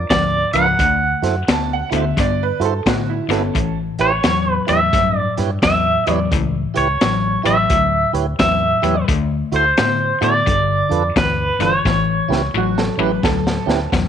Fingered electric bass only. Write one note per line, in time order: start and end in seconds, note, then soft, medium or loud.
0.10 0.44 D2 medium
0.53 0.73 C#2 medium
0.79 1.13 D2 medium
1.22 1.42 F#2 medium
1.48 1.82 D2 medium
1.92 2.11 D2 medium
2.17 2.51 G2 medium
2.60 2.80 G2 medium
2.86 3.20 A2 medium
3.28 3.49 G1 medium
3.54 3.89 A1 medium
3.99 4.19 A1 medium
4.24 4.58 E2 medium
4.69 4.88 E2 medium
4.93 5.27 G2 medium
5.38 5.57 G2 medium
5.62 5.96 E2 medium
6.07 6.26 E2 medium
6.31 6.65 C#2 medium
6.77 6.96 C#2 medium
7.02 7.35 A1 medium
7.45 7.64 A1 medium
7.70 8.04 D2 medium
8.13 8.33 D2 medium
8.39 8.73 E2 medium
8.83 9.03 E2 medium
9.09 9.42 D2 medium
9.52 9.72 D2 medium
9.79 10.12 A2 medium
10.22 10.41 A2 medium
10.47 10.80 G1 medium
10.91 11.10 F2 medium
11.16 11.50 D2 medium
11.59 11.79 G1 medium
11.85 12.19 A1 medium
12.29 12.49 C#2 medium
12.54 12.88 A1 medium
12.97 13.17 A1 medium
13.23 13.57 D2 medium
13.67 13.87 D2 medium
13.93 14.08 E2 medium